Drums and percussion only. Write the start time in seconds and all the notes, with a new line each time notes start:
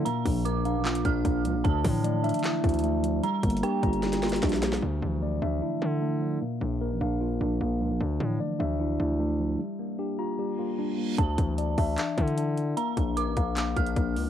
0.06 closed hi-hat
0.26 kick, open hi-hat
0.45 closed hi-hat
0.65 closed hi-hat
0.85 clap, closed hi-hat
0.95 closed hi-hat
1.05 kick, closed hi-hat
1.25 kick, closed hi-hat
1.45 closed hi-hat
1.65 kick, closed hi-hat
1.84 kick, open hi-hat
2.04 closed hi-hat
2.24 closed hi-hat
2.29 closed hi-hat
2.34 closed hi-hat
2.39 closed hi-hat
2.44 clap, closed hi-hat
2.64 kick, closed hi-hat
2.69 closed hi-hat
2.74 closed hi-hat
2.79 closed hi-hat
2.84 closed hi-hat
3.04 closed hi-hat
3.24 closed hi-hat
3.43 kick, closed hi-hat, open hi-hat
3.50 closed hi-hat
3.57 closed hi-hat
3.63 cross-stick, closed hi-hat
3.83 kick, closed hi-hat
3.93 closed hi-hat
4.03 snare, closed hi-hat
4.13 snare, closed hi-hat
4.23 snare, closed hi-hat
4.29 snare, closed hi-hat
4.36 closed hi-hat
4.43 kick, snare, closed hi-hat
4.49 snare, closed hi-hat
4.56 closed hi-hat
4.63 snare, closed hi-hat
4.73 snare
11.18 kick, closed hi-hat
11.38 kick, closed hi-hat
11.58 closed hi-hat
11.78 kick, open hi-hat
11.98 clap, closed hi-hat
12.18 kick, closed hi-hat
12.28 closed hi-hat
12.38 closed hi-hat
12.58 closed hi-hat
12.77 closed hi-hat
12.97 kick, closed hi-hat
13.17 closed hi-hat
13.37 kick, closed hi-hat
13.57 clap, closed hi-hat
13.77 kick, closed hi-hat
13.87 closed hi-hat
13.96 kick, closed hi-hat
14.16 open hi-hat